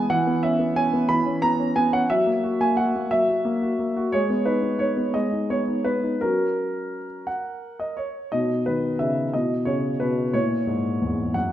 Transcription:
Already playing: B3 G#5
0.10 E3 F#5
0.27 B3
0.43 C#4 E5
0.59 B3
0.76 C#4 G#5
0.93 B3
1.09 E3 B5
1.26 C#4
1.42 B3 A#5
1.60 C#4
1.76 B3 G#5
1.93 C#4 F#5
2.10 F#3 E5
2.26 A#3
2.43 F#4
2.61 A#3 G#5
2.77 F#4 F#5
2.96 A#3
3.11 F#3 E5
3.29 F#4
3.45 A#3
3.62 F#4
3.79 A#3
3.97 F#4
4.12 G#3 C#5
4.30 B3
4.45 D#4 B4
4.62 B3
4.79 D#4 C#5
4.97 B3
5.14 G#3 D#5
5.32 D#4
5.50 B3 C#5
5.67 D#4
5.84 B3 B4
6.03 D#4
6.21 F#3 C#4 F#4 A#4
7.27 F#5
7.80 D#5
7.97 C#5
8.32 B2 D#4 D#5
8.66 D#3 B4
8.99 C#3 E5
9.33 B2 E4 D#5
9.65 C#3 C#5
10.00 B2 B4
10.33 A#2 E4 C#5
10.67 G#2
11.01 E2
11.34 F#2 F#5

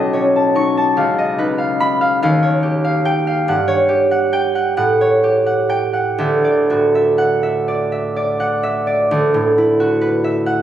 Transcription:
Already playing: B1 B3 C#4 B4 C#5 D#5 A5 B5
0.13 C#4 C#5
0.36 A5
0.55 D#4 C#6
0.77 A5
0.97 C#2 F5
1.18 D#5
1.38 D#4 B4
1.58 F5
1.80 B5
2.01 F5
2.22 D#2 F5
2.43 C#5
2.63 G4
2.84 F5
3.05 G5
3.27 F5
3.48 G2 F#5
3.68 C#5
3.89 G4
4.11 F#5
4.33 G5
4.55 F#5
4.77 A2 F#5
5.01 C#5
5.23 G4
5.46 F#5
5.69 G5
5.93 F#5
6.18 D2 E5
6.44 D5
6.70 A2 F#4
6.95 E5
7.18 F#5
7.43 E5
7.68 D5
7.92 E5
8.16 D5
8.40 F#5
8.63 E5
8.87 D5
9.11 D2
9.34 A2
9.58 E4
9.80 F#4
10.01 B4
10.24 E5
10.46 F#5

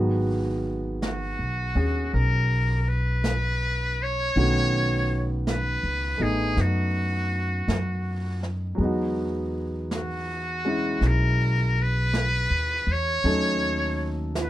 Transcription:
Already playing: G#1 D#3 F#3 G#3 B3 F#4
1.02 F#4, brush sweep, snare, hi-hat pedal
1.39 B1
1.75 D#2 C#4 G#4
2.14 B1 A#4, brush sweep
2.80 A#4
2.88 B4
3.24 brush sweep, snare, hi-hat pedal
4.03 C#5
4.36 B1 D#3 A3 B3 C#4 F#4, brush sweep
5.47 B4, brush sweep, snare, hi-hat pedal
5.83 C#2
6.17 A1 A3 B3 D#4
6.22 G#4
6.57 F#2 F#4, brush sweep, snare
7.68 F#2, brush sweep, snare, hi-hat pedal
8.43 snare
8.75 E2 F#3 G#3
8.80 B3 D#4, brush sweep
8.85 F#4
9.91 brush sweep, snare, hi-hat pedal
9.96 F#4
10.65 G#3 C#4 E4
11.01 B1, brush sweep, snare
11.07 A#4
11.82 B4
12.13 brush sweep, snare, hi-hat pedal
12.50 D#2
12.87 E2
12.92 C#5
13.24 D#2 F#3 A3 C#4 D#4 A4, brush sweep
14.35 brush sweep, snare, hi-hat pedal
14.41 B4

